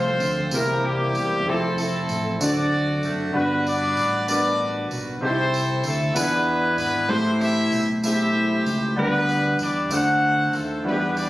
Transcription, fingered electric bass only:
0, 0, Header, 1, 2, 480
1, 0, Start_track
1, 0, Key_signature, -1, "major"
1, 0, Tempo, 625652
1, 1122, Time_signature, 6, 3, 24, 8
1, 2566, Key_signature, 1, "major"
1, 8666, End_track
2, 0, Start_track
2, 0, Title_t, "Fingered electric bass"
2, 0, Program_c, 0, 33
2, 0, Note_on_c, 0, 36, 106
2, 167, Note_off_c, 0, 36, 0
2, 167, Note_on_c, 0, 38, 80
2, 385, Note_off_c, 0, 38, 0
2, 404, Note_on_c, 0, 36, 98
2, 853, Note_off_c, 0, 36, 0
2, 885, Note_on_c, 0, 28, 89
2, 1105, Note_off_c, 0, 28, 0
2, 1121, Note_on_c, 0, 29, 98
2, 1572, Note_off_c, 0, 29, 0
2, 1602, Note_on_c, 0, 33, 86
2, 1824, Note_off_c, 0, 33, 0
2, 1842, Note_on_c, 0, 38, 106
2, 2293, Note_off_c, 0, 38, 0
2, 2323, Note_on_c, 0, 30, 82
2, 2545, Note_off_c, 0, 30, 0
2, 2560, Note_on_c, 0, 31, 106
2, 3013, Note_off_c, 0, 31, 0
2, 3042, Note_on_c, 0, 33, 87
2, 3734, Note_off_c, 0, 33, 0
2, 3768, Note_on_c, 0, 35, 85
2, 3989, Note_off_c, 0, 35, 0
2, 4003, Note_on_c, 0, 36, 106
2, 4454, Note_off_c, 0, 36, 0
2, 4483, Note_on_c, 0, 38, 85
2, 4706, Note_off_c, 0, 38, 0
2, 4725, Note_on_c, 0, 40, 107
2, 5175, Note_off_c, 0, 40, 0
2, 5203, Note_on_c, 0, 32, 86
2, 5425, Note_off_c, 0, 32, 0
2, 5437, Note_on_c, 0, 33, 102
2, 5891, Note_off_c, 0, 33, 0
2, 5926, Note_on_c, 0, 35, 87
2, 6614, Note_off_c, 0, 35, 0
2, 6645, Note_on_c, 0, 37, 96
2, 6865, Note_off_c, 0, 37, 0
2, 6882, Note_on_c, 0, 38, 116
2, 7331, Note_off_c, 0, 38, 0
2, 7364, Note_on_c, 0, 40, 90
2, 7584, Note_off_c, 0, 40, 0
2, 7605, Note_on_c, 0, 38, 105
2, 8052, Note_off_c, 0, 38, 0
2, 8078, Note_on_c, 0, 39, 99
2, 8300, Note_off_c, 0, 39, 0
2, 8319, Note_on_c, 0, 40, 109
2, 8666, Note_off_c, 0, 40, 0
2, 8666, End_track
0, 0, End_of_file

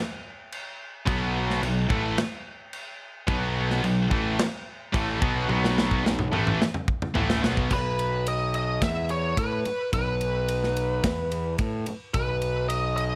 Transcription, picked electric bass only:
0, 0, Header, 1, 3, 480
1, 0, Start_track
1, 0, Tempo, 553506
1, 929, Time_signature, 4, 2, 24, 8
1, 11406, End_track
2, 0, Start_track
2, 0, Title_t, "Picked electric bass"
2, 0, Program_c, 0, 34
2, 930, Note_on_c, 0, 35, 104
2, 1376, Note_off_c, 0, 35, 0
2, 1405, Note_on_c, 0, 35, 78
2, 1630, Note_off_c, 0, 35, 0
2, 1647, Note_on_c, 0, 33, 112
2, 1871, Note_off_c, 0, 33, 0
2, 2844, Note_on_c, 0, 35, 96
2, 3293, Note_off_c, 0, 35, 0
2, 3321, Note_on_c, 0, 35, 79
2, 3548, Note_off_c, 0, 35, 0
2, 3569, Note_on_c, 0, 33, 112
2, 3792, Note_off_c, 0, 33, 0
2, 4285, Note_on_c, 0, 33, 79
2, 4510, Note_off_c, 0, 33, 0
2, 4527, Note_on_c, 0, 35, 92
2, 4751, Note_off_c, 0, 35, 0
2, 4763, Note_on_c, 0, 35, 98
2, 5212, Note_off_c, 0, 35, 0
2, 5238, Note_on_c, 0, 35, 69
2, 5466, Note_off_c, 0, 35, 0
2, 5482, Note_on_c, 0, 33, 99
2, 5708, Note_off_c, 0, 33, 0
2, 6202, Note_on_c, 0, 33, 83
2, 6428, Note_off_c, 0, 33, 0
2, 6441, Note_on_c, 0, 35, 91
2, 6668, Note_off_c, 0, 35, 0
2, 6684, Note_on_c, 0, 35, 97
2, 7613, Note_off_c, 0, 35, 0
2, 7647, Note_on_c, 0, 40, 76
2, 8095, Note_off_c, 0, 40, 0
2, 8128, Note_on_c, 0, 45, 67
2, 8352, Note_off_c, 0, 45, 0
2, 8612, Note_on_c, 0, 35, 89
2, 9537, Note_off_c, 0, 35, 0
2, 9577, Note_on_c, 0, 40, 86
2, 10020, Note_off_c, 0, 40, 0
2, 10050, Note_on_c, 0, 45, 73
2, 10273, Note_off_c, 0, 45, 0
2, 10531, Note_on_c, 0, 35, 91
2, 11406, Note_off_c, 0, 35, 0
2, 11406, End_track
3, 0, Start_track
3, 0, Title_t, "Muted picked electric bass strokes"
3, 8376, Note_on_c, 9, 29, 41
3, 8462, Note_off_c, 9, 29, 0
3, 10294, Note_on_c, 9, 29, 40
3, 10381, Note_off_c, 9, 29, 0
3, 11406, End_track
0, 0, End_of_file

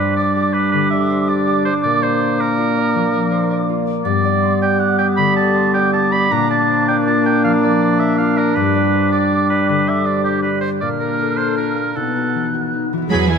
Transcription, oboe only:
0, 0, Header, 1, 2, 480
1, 0, Start_track
1, 0, Tempo, 372671
1, 2365, Time_signature, 12, 3, 24, 8
1, 10532, Tempo, 379507
1, 17117, End_track
2, 0, Start_track
2, 0, Title_t, "Oboe"
2, 0, Program_c, 0, 68
2, 0, Note_on_c, 0, 71, 53
2, 201, Note_off_c, 0, 71, 0
2, 209, Note_on_c, 0, 74, 65
2, 683, Note_on_c, 0, 71, 64
2, 702, Note_off_c, 0, 74, 0
2, 915, Note_off_c, 0, 71, 0
2, 923, Note_on_c, 0, 71, 74
2, 1155, Note_off_c, 0, 71, 0
2, 1163, Note_on_c, 0, 76, 73
2, 1659, Note_on_c, 0, 74, 63
2, 1679, Note_off_c, 0, 76, 0
2, 2120, Note_off_c, 0, 74, 0
2, 2127, Note_on_c, 0, 72, 70
2, 2235, Note_off_c, 0, 72, 0
2, 2353, Note_on_c, 0, 74, 85
2, 2610, Note_on_c, 0, 72, 73
2, 2629, Note_off_c, 0, 74, 0
2, 3098, Note_on_c, 0, 70, 83
2, 3117, Note_off_c, 0, 72, 0
2, 4756, Note_off_c, 0, 70, 0
2, 5208, Note_on_c, 0, 74, 84
2, 5887, Note_off_c, 0, 74, 0
2, 5948, Note_on_c, 0, 79, 89
2, 6177, Note_on_c, 0, 78, 78
2, 6196, Note_off_c, 0, 79, 0
2, 6411, Note_off_c, 0, 78, 0
2, 6419, Note_on_c, 0, 79, 83
2, 6530, Note_off_c, 0, 79, 0
2, 6656, Note_on_c, 0, 83, 91
2, 6898, Note_off_c, 0, 83, 0
2, 6907, Note_on_c, 0, 81, 86
2, 7380, Note_off_c, 0, 81, 0
2, 7394, Note_on_c, 0, 79, 89
2, 7631, Note_off_c, 0, 79, 0
2, 7642, Note_on_c, 0, 81, 82
2, 7875, Note_on_c, 0, 83, 88
2, 7894, Note_off_c, 0, 81, 0
2, 8135, Note_on_c, 0, 82, 85
2, 8154, Note_off_c, 0, 83, 0
2, 8370, Note_off_c, 0, 82, 0
2, 8381, Note_on_c, 0, 81, 82
2, 8846, Note_off_c, 0, 81, 0
2, 8861, Note_on_c, 0, 79, 83
2, 8966, Note_off_c, 0, 79, 0
2, 9108, Note_on_c, 0, 81, 78
2, 9334, Note_off_c, 0, 81, 0
2, 9347, Note_on_c, 0, 79, 86
2, 9574, Note_off_c, 0, 79, 0
2, 9588, Note_on_c, 0, 77, 85
2, 9692, Note_off_c, 0, 77, 0
2, 9835, Note_on_c, 0, 74, 77
2, 10298, Note_on_c, 0, 76, 85
2, 10317, Note_off_c, 0, 74, 0
2, 10526, Note_off_c, 0, 76, 0
2, 10533, Note_on_c, 0, 77, 82
2, 10781, Note_on_c, 0, 70, 70
2, 10800, Note_off_c, 0, 77, 0
2, 11007, Note_on_c, 0, 71, 81
2, 11026, Note_off_c, 0, 70, 0
2, 11714, Note_off_c, 0, 71, 0
2, 11721, Note_on_c, 0, 74, 80
2, 12187, Note_off_c, 0, 74, 0
2, 12204, Note_on_c, 0, 71, 73
2, 12434, Note_off_c, 0, 71, 0
2, 12444, Note_on_c, 0, 71, 77
2, 12690, Note_on_c, 0, 76, 68
2, 12709, Note_off_c, 0, 71, 0
2, 12911, Note_on_c, 0, 74, 58
2, 12930, Note_off_c, 0, 76, 0
2, 13134, Note_off_c, 0, 74, 0
2, 13142, Note_on_c, 0, 67, 70
2, 13367, Note_off_c, 0, 67, 0
2, 13375, Note_on_c, 0, 71, 59
2, 13604, Note_off_c, 0, 71, 0
2, 13612, Note_on_c, 0, 72, 61
2, 13723, Note_off_c, 0, 72, 0
2, 13865, Note_on_c, 0, 74, 63
2, 13973, Note_off_c, 0, 74, 0
2, 14094, Note_on_c, 0, 70, 57
2, 14573, Note_on_c, 0, 72, 66
2, 14592, Note_off_c, 0, 70, 0
2, 14821, Note_off_c, 0, 72, 0
2, 14827, Note_on_c, 0, 70, 51
2, 15313, Note_on_c, 0, 69, 53
2, 15332, Note_off_c, 0, 70, 0
2, 16044, Note_off_c, 0, 69, 0
2, 16780, Note_on_c, 0, 80, 46
2, 16886, Note_off_c, 0, 80, 0
2, 17011, Note_on_c, 0, 80, 44
2, 17117, Note_off_c, 0, 80, 0
2, 17117, End_track
0, 0, End_of_file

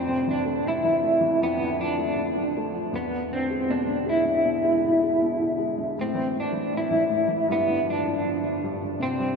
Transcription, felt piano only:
0, 0, Header, 1, 2, 480
1, 0, Start_track
1, 0, Tempo, 759494
1, 1847, Time_signature, 4, 2, 24, 8
1, 5916, End_track
2, 0, Start_track
2, 0, Title_t, "Felt piano"
2, 0, Program_c, 0, 0
2, 0, Note_on_c, 0, 41, 56
2, 51, Note_on_c, 0, 48, 47
2, 67, Control_c, 0, 64, 127
2, 174, Note_on_c, 0, 52, 45
2, 284, Note_on_c, 0, 57, 47
2, 400, Note_off_c, 0, 48, 0
2, 409, Note_on_c, 0, 48, 43
2, 523, Note_off_c, 0, 52, 0
2, 533, Note_on_c, 0, 52, 43
2, 638, Note_off_c, 0, 57, 0
2, 648, Note_on_c, 0, 57, 50
2, 754, Note_off_c, 0, 52, 0
2, 763, Note_on_c, 0, 52, 46
2, 866, Note_off_c, 0, 41, 0
2, 874, Note_off_c, 0, 48, 0
2, 881, Note_off_c, 0, 57, 0
2, 883, Note_off_c, 0, 52, 0
2, 894, Note_on_c, 0, 41, 59
2, 898, Control_c, 0, 64, 0
2, 1002, Control_c, 0, 64, 127
2, 1009, Note_on_c, 0, 50, 45
2, 1129, Note_on_c, 0, 53, 45
2, 1247, Note_on_c, 0, 57, 44
2, 1355, Note_off_c, 0, 50, 0
2, 1364, Note_on_c, 0, 50, 45
2, 1489, Note_off_c, 0, 53, 0
2, 1498, Note_on_c, 0, 53, 42
2, 1611, Note_off_c, 0, 57, 0
2, 1620, Note_on_c, 0, 57, 49
2, 1718, Note_off_c, 0, 53, 0
2, 1727, Note_on_c, 0, 53, 43
2, 1824, Note_off_c, 0, 41, 0
2, 1830, Note_off_c, 0, 50, 0
2, 1843, Note_off_c, 0, 53, 0
2, 1846, Note_off_c, 0, 57, 0
2, 1849, Note_on_c, 0, 40, 54
2, 1855, Control_c, 0, 64, 0
2, 1968, Control_c, 0, 64, 127
2, 2096, Note_on_c, 0, 50, 44
2, 2215, Note_on_c, 0, 56, 46
2, 2333, Note_on_c, 0, 47, 43
2, 2434, Note_off_c, 0, 50, 0
2, 2444, Note_on_c, 0, 50, 44
2, 2554, Note_off_c, 0, 56, 0
2, 2563, Note_on_c, 0, 56, 48
2, 2675, Note_off_c, 0, 50, 0
2, 2685, Note_on_c, 0, 50, 46
2, 2796, Note_off_c, 0, 47, 0
2, 2806, Note_on_c, 0, 47, 56
2, 2919, Note_off_c, 0, 56, 0
2, 2929, Note_on_c, 0, 56, 42
2, 3051, Note_off_c, 0, 50, 0
2, 3061, Note_on_c, 0, 50, 44
2, 3169, Note_off_c, 0, 56, 0
2, 3178, Note_on_c, 0, 56, 43
2, 3284, Note_off_c, 0, 47, 0
2, 3294, Note_on_c, 0, 47, 42
2, 3399, Note_off_c, 0, 50, 0
2, 3409, Note_on_c, 0, 50, 39
2, 3519, Note_off_c, 0, 56, 0
2, 3528, Note_on_c, 0, 56, 47
2, 3643, Note_off_c, 0, 50, 0
2, 3653, Note_on_c, 0, 50, 42
2, 3751, Note_off_c, 0, 40, 0
2, 3761, Note_off_c, 0, 47, 0
2, 3765, Note_off_c, 0, 56, 0
2, 3770, Note_off_c, 0, 50, 0
2, 3780, Note_on_c, 0, 45, 53
2, 3783, Control_c, 0, 64, 0
2, 3883, Note_on_c, 0, 52, 43
2, 3905, Control_c, 0, 64, 127
2, 3992, Note_off_c, 0, 45, 0
2, 4002, Note_on_c, 0, 45, 44
2, 4113, Note_off_c, 0, 52, 0
2, 4123, Note_on_c, 0, 52, 43
2, 4232, Note_off_c, 0, 45, 0
2, 4241, Note_on_c, 0, 45, 42
2, 4356, Note_off_c, 0, 52, 0
2, 4365, Note_on_c, 0, 52, 42
2, 4472, Note_off_c, 0, 45, 0
2, 4481, Note_on_c, 0, 45, 46
2, 4592, Note_off_c, 0, 52, 0
2, 4602, Note_on_c, 0, 52, 45
2, 4721, Note_off_c, 0, 45, 0
2, 4725, Note_off_c, 0, 52, 0
2, 4726, Note_on_c, 0, 43, 58
2, 4743, Control_c, 0, 64, 0
2, 4854, Note_on_c, 0, 50, 43
2, 4871, Control_c, 0, 64, 127
2, 4965, Note_on_c, 0, 53, 43
2, 5072, Note_off_c, 0, 50, 0
2, 5082, Note_on_c, 0, 50, 46
2, 5200, Note_off_c, 0, 53, 0
2, 5210, Note_on_c, 0, 53, 45
2, 5323, Note_off_c, 0, 50, 0
2, 5332, Note_on_c, 0, 50, 42
2, 5444, Note_off_c, 0, 43, 0
2, 5454, Note_on_c, 0, 43, 46
2, 5564, Note_off_c, 0, 50, 0
2, 5573, Note_on_c, 0, 50, 45
2, 5679, Note_off_c, 0, 53, 0
2, 5682, Note_on_c, 0, 48, 58
2, 5688, Note_off_c, 0, 43, 0
2, 5691, Note_off_c, 0, 50, 0
2, 5703, Control_c, 0, 64, 0
2, 5804, Control_c, 0, 64, 127
2, 5805, Note_on_c, 0, 55, 45
2, 5916, Note_off_c, 0, 48, 0
2, 5916, Note_off_c, 0, 55, 0
2, 5916, End_track
0, 0, End_of_file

